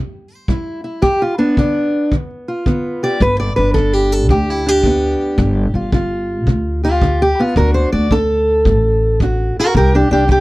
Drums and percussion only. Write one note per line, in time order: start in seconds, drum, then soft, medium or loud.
0.48 kick medium
1.03 kick medium
1.57 kick medium
2.12 kick medium
2.66 kick medium
3.20 kick medium
3.75 kick medium
4.29 kick medium
4.83 kick medium
5.38 kick medium
5.92 kick medium
6.47 kick medium
7.02 kick medium
7.56 kick medium
8.11 kick medium
8.65 kick medium
9.20 kick medium
9.75 kick medium
10.29 kick medium